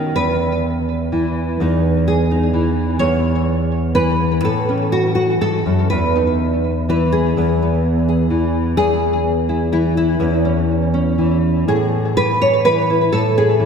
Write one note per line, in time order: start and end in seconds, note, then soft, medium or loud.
0.00 0.16 D#3 medium
0.00 0.14 D#4 soft
0.00 0.15 F#4 medium
0.16 1.60 E2 medium
0.16 2.06 B4 medium
1.12 2.53 E3 medium
1.60 2.99 E2 medium
1.60 2.30 D#4 soft
2.08 2.99 G#4 medium
2.31 2.98 D#4 soft
2.53 3.94 E3 medium
2.99 4.43 E2 medium
2.99 3.94 C#5 loud
3.95 6.19 E3 medium
3.95 4.43 B4 loud
4.44 5.41 A2 medium
4.44 4.92 A4 medium
4.69 5.88 C#4 soft
4.92 5.14 F#4 medium
5.15 5.40 F#4 medium
5.41 5.66 G#2 medium
5.41 5.89 A4 medium
5.66 5.91 F#2 medium
5.90 7.37 E2 medium
5.90 6.88 B4 medium
6.16 7.34 D#4 soft
6.89 8.30 E3 medium
6.89 7.61 B4 medium
7.12 8.07 G#4 medium
7.37 8.78 E2 medium
7.37 7.61 B3 soft
7.62 8.77 B3 soft
8.09 8.77 G#4 soft
8.30 9.72 E3 medium
8.77 10.18 E2 medium
8.77 10.20 G#4 loud
9.49 9.72 E4 soft
9.72 11.17 E3 medium
9.72 9.96 E4 medium
9.97 11.67 E4 medium
10.20 11.67 E2 medium
10.20 10.44 C#4 soft
10.45 10.93 C#4 soft
10.94 11.64 C#4 soft
11.18 12.16 E3 medium
11.68 13.09 A2 medium
11.68 12.65 G#4 medium
12.17 12.63 E3 medium
12.17 12.40 B4 loud
12.42 12.65 C#5 medium
12.64 13.09 E3 medium
12.64 13.12 B4 loud
12.90 13.10 E4 soft
13.12 13.65 A2 medium
13.12 13.65 A4 medium
13.38 13.65 G#4 medium
13.59 13.65 E3 medium